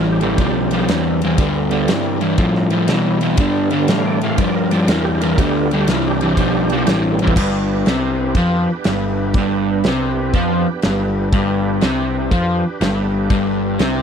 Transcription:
Already playing: A1 G2 E3
0.09 G4
0.21 G2 D3 E3 G3 B3, ride
0.38 B1 G2 F3, kick, ride
0.71 G2 F3, ride
0.88 E2 G2 E3, snare, ride
1.21 G2 E3, ride
1.38 D2 G2 D3 G3 B3, kick, ride
1.71 G2 D3, ride
1.88 G2 E3, snare, ride
2.21 G2 E3, ride
2.38 G2 A2 F3, kick, ride
2.55 snare
2.70 G2 F3, ride
2.88 G2 B2 E3, snare, ride
3.21 G2 E3, ride
3.37 G2 D3, kick, ride
3.42 G3 B3
3.70 G2 D3, ride
3.88 G2 A2 E3 F5, snare, ride
4.06 D5
4.21 G2 E3 F5, ride
4.38 G2 F3 D5, kick, ride
4.56 A#4
4.71 G2 F3 D5, ride
4.88 E2 G2 E3 A#4, snare, ride
5.05 G4
5.21 G2 E3 A#4, ride
5.38 D2 G2 D3 G3 B3 G4, kick, ride
5.56 F4
5.71 G2 D3 G4, ride
5.87 C2 G2 E3 F4, snare, ride
6.07 D4 G4
6.21 G2 E3, ride
6.37 B1 G2 F3, kick, ride
6.70 G2 F3, ride
6.87 A1 G2 E3, snare, ride
7.06 G3 A3
7.13 B3 C4
7.18 D4 E4, ride
7.22 G2 E3 F4 G4
7.27 A4 B4, kick
7.36 G1 G2 B3 D4 G4 B4 C5, kick, crash
7.86 C2 C3, snare, crash
8.35 F2 F3, kick, crash
8.84 G1 G2, snare, crash
9.34 G1 G2, kick, crash
9.84 C2 C3, snare, crash
10.33 F2 F3, kick, crash
10.82 G1 G2, snare, crash
11.32 G1 G2 D4 G4 B4, kick, crash
11.81 C2 C3, snare, crash
12.31 F2 F3, kick, crash
12.81 G1 G2, snare, crash
13.30 G1 G2, kick, crash
13.79 C2 C3, snare, crash

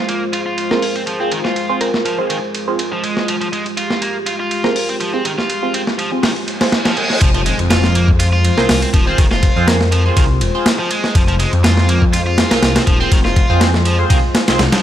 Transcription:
Already playing: G#3 F4 C5
0.09 A#3, ride
0.33 F4, ride
0.46 F4
0.58 ride
0.71 C4 F4 G#4 A#4 C5, snare
0.82 open hi-hat
0.96 C4, ride
1.07 F3, ride
1.20 C4 F4 G#4 C5
1.31 D#3, ride
1.45 F4, snare
1.56 ride
1.69 C4 F4 G#4 C5
1.81 C4 A#4, ride
1.94 snare
2.05 F3, ride
2.18 C4 F4 G#4 C5
2.30 D#3, ride
2.55 ride
2.68 C4 F4 G#4 C5
2.79 ride
2.92 F3
3.04 G#3, ride
3.17 snare
3.28 F3 G4, ride
3.41 F3, ride
3.53 G#3, ride
3.66 ride
3.77 F4, ride
3.90 snare
4.02 A#3, ride
4.26 F4, ride
4.40 F4
4.51 ride
4.64 C4 F4 G#4 A#4 C5, snare
4.76 open hi-hat
4.89 C4, ride
5.00 F3, ride
5.13 C4 F4 G#4 C5
5.25 D#3, ride
5.38 F4, snare
5.50 ride
5.63 C4 F4 G#4 C5
5.74 C4, ride
5.87 snare
5.99 F3, ride
6.12 C4 F4 G#4 C5
6.23 D#3, snare, open hi-hat, reverse cymbal
6.36 ride
6.48 ride
6.61 C4 F4 G#4 C5, snare, open hi-hat
6.72 snare, ride
6.85 F3, snare, ride
6.97 G#3, ride
7.10 snare
7.21 F1 F3 G#3 F4 C5, kick, ride, impact
7.34 F3, ride
7.46 G#3, ride
7.59 F2, ride
7.70 F4, snare, ride
7.84 snare
7.95 A#3, ride
8.08 kick
8.20 F4, ride
8.33 F4
8.45 ride
8.58 C2 C4 F4 G#4 A#4 C5, snare
8.69 C2, snare, open hi-hat
8.82 C4, ride
8.94 D#1 F3, kick, ride
9.07 C4 F4 G#4 C5
9.18 F1 D#3, kick, ride
9.31 F4, snare
9.43 kick, ride
9.56 F2 C4 F4 G#4 C5
9.67 C4 A#4, snare, ride
9.81 snare
9.92 F3, ride
10.05 C4 F4 G#4 C5
10.17 C2 D#3, kick, ride
10.41 D#1, ride
10.55 C4 F4 G#4 C5
10.66 snare, ride
10.79 F3
10.91 G#3, ride
11.04 snare
11.15 F1 F3, kick, ride
11.28 F3, ride
11.40 G#3, ride
11.53 F2, ride
11.64 F4, snare, ride
11.77 snare
11.89 A#3, ride
12.02 kick
12.13 F4, ride
12.27 F4
12.38 snare, ride
12.51 C2 C4 F4 G#4 A#4 C5, snare, ride
12.62 C2, snare, ride
12.75 C4, snare, ride
12.87 D#1 F3, kick, ride
13.00 C4 F4 G#4 C5
13.12 F1 D#3, kick, ride
13.25 F4, snare
13.36 kick, ride
13.50 F2 C4 F4 G#4 C5
13.61 C4, snare, ride
13.74 snare
13.85 F3, ride
13.99 C4 F4 G#4 C5
14.10 C2 D#3, kick, ride
14.35 snare, ride
14.48 C2 C4 F4 G#4 C5, snare, ride
14.59 C2, snare, ride
14.72 F3, snare, ride

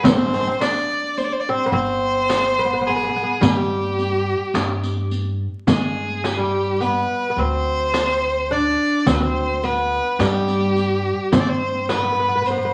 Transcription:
0.04 G1 C4 C5, riq, frame drum
0.10 C4
0.17 C4
0.26 C4
0.34 C4, riq
0.40 C4
0.47 C4
0.60 D4 D5, riq, frame drum
1.17 C5, riq
1.24 D5
1.32 C5
1.40 D5
1.49 C4 C5
1.66 B3
1.72 G1 C4 C5
2.29 riq, frame drum
2.59 B3
2.65 B3
2.73 B3
2.81 B3
2.87 B3 G#4
2.96 B3
3.03 B3
3.09 B3
3.16 B3
3.23 B3
3.41 G2 G3 G#4, riq, frame drum
3.54 G4
3.99 riq
4.54 G2, riq, frame drum
4.83 riq
5.11 riq
5.67 G2 G#3 G#4, riq, frame drum
6.24 G4, riq, frame drum
6.33 G#4
6.37 G3 G4
6.80 B3 B4, riq
7.30 B3
7.37 D2 C4 C5
7.94 riq, frame drum
8.51 D4 D5
9.06 D2 C4 C5, riq, frame drum
9.14 B4
9.20 C4 C5
9.63 B3 B4, riq
10.19 G2 G3 G4, riq, frame drum
10.48 riq
10.76 riq
11.32 G2 C4 C5, riq, frame drum
11.40 D5
11.46 C4 C5
11.89 B3 B4, riq, frame drum
11.97 B3
12.04 B3
12.12 B3
12.19 B3
12.28 B3
12.35 B3
12.42 B3, riq
12.46 C5
12.51 B3
12.57 B3
12.65 B3

